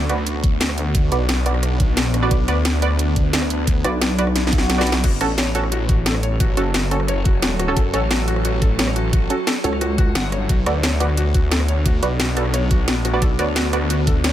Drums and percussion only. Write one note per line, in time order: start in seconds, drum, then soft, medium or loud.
0.09 closed hi-hat medium
0.18 cross-stick soft
0.27 closed hi-hat medium
0.44 kick loud
0.44 closed hi-hat medium
0.61 snare loud
0.61 closed hi-hat medium
0.69 cross-stick medium
0.78 closed hi-hat medium
0.95 kick loud
0.95 closed hi-hat loud
1.12 closed hi-hat medium
1.29 snare loud
1.29 closed hi-hat loud
1.46 closed hi-hat medium
1.54 cross-stick soft
1.63 cross-stick soft
1.63 closed hi-hat loud
1.80 kick loud
1.80 closed hi-hat medium
1.97 snare loud
1.97 closed hi-hat medium
2.14 cross-stick soft
2.14 closed hi-hat medium
2.31 kick loud
2.31 closed hi-hat loud
2.48 cross-stick medium
2.48 closed hi-hat medium
2.65 snare loud
2.65 closed hi-hat loud
2.82 closed hi-hat medium
2.91 cross-stick soft
2.99 closed hi-hat loud
3.16 kick loud
3.16 closed hi-hat medium
3.33 snare loud
3.33 closed hi-hat loud
3.42 cross-stick medium
3.50 closed hi-hat medium
3.67 kick loud
3.67 closed hi-hat loud
3.84 cross-stick medium
3.84 closed hi-hat medium
4.02 snare loud
4.02 closed hi-hat loud
4.19 closed hi-hat medium
4.27 cross-stick soft
4.36 snare medium
4.36 closed hi-hat loud
4.47 snare medium
4.53 kick loud
4.53 closed hi-hat medium
4.58 snare medium
4.70 snare medium
4.70 closed hi-hat loud
4.81 snare loud
4.87 closed hi-hat medium
4.92 snare loud
5.04 kick loud
5.04 closed hi-hat loud
5.04 crash medium
5.21 cross-stick medium
5.21 closed hi-hat medium
5.38 snare loud
5.38 closed hi-hat loud
5.55 closed hi-hat medium
5.63 cross-stick soft
5.72 closed hi-hat loud
5.89 kick loud
5.89 closed hi-hat medium
6.06 snare loud
6.06 closed hi-hat loud
6.15 cross-stick medium
6.23 closed hi-hat medium
6.40 kick loud
6.40 closed hi-hat loud
6.57 closed hi-hat medium
6.74 snare loud
6.74 closed hi-hat loud
6.91 closed hi-hat medium
7.00 cross-stick soft
7.08 cross-stick medium
7.08 closed hi-hat loud
7.25 kick loud
7.25 closed hi-hat medium
7.42 snare loud
7.42 closed hi-hat medium
7.59 cross-stick medium
7.59 closed hi-hat medium
7.77 kick loud
7.77 closed hi-hat medium
7.94 cross-stick medium
7.94 closed hi-hat medium
8.11 snare loud
8.11 closed hi-hat medium
8.28 closed hi-hat medium
8.36 cross-stick soft
8.45 closed hi-hat medium
8.62 kick loud
8.62 closed hi-hat medium
8.79 snare loud
8.79 closed hi-hat medium
8.87 cross-stick medium
8.96 closed hi-hat medium
9.13 kick loud
9.13 closed hi-hat medium
9.30 closed hi-hat medium
9.47 snare loud
9.47 closed hi-hat medium
9.64 closed hi-hat medium
9.73 cross-stick soft
9.81 cross-stick soft
9.81 closed hi-hat medium
9.98 kick loud
9.98 closed hi-hat medium
10.15 snare loud
10.15 closed hi-hat medium
10.32 cross-stick soft
10.32 closed hi-hat medium
10.49 kick loud
10.49 closed hi-hat medium
10.66 cross-stick medium
10.66 closed hi-hat medium
10.83 snare loud
10.83 closed hi-hat medium
11.00 closed hi-hat medium
11.09 cross-stick soft
11.17 closed hi-hat medium
11.34 kick loud
11.34 closed hi-hat medium
11.52 snare loud
11.52 closed hi-hat medium
11.60 cross-stick medium
11.68 closed hi-hat medium
11.86 kick loud
11.86 closed hi-hat loud
12.03 closed hi-hat medium
12.20 snare loud
12.20 closed hi-hat loud
12.37 closed hi-hat medium
12.45 cross-stick soft
12.54 cross-stick soft
12.54 closed hi-hat loud
12.71 kick loud
12.71 closed hi-hat medium
12.88 snare loud
12.88 closed hi-hat medium
13.05 cross-stick soft
13.05 closed hi-hat medium
13.22 kick loud
13.22 closed hi-hat loud
13.39 cross-stick medium
13.39 closed hi-hat medium
13.56 snare loud
13.56 closed hi-hat loud
13.73 closed hi-hat medium
13.82 cross-stick soft
13.90 closed hi-hat loud
14.07 kick loud
14.07 closed hi-hat medium
14.24 snare loud
14.24 closed hi-hat medium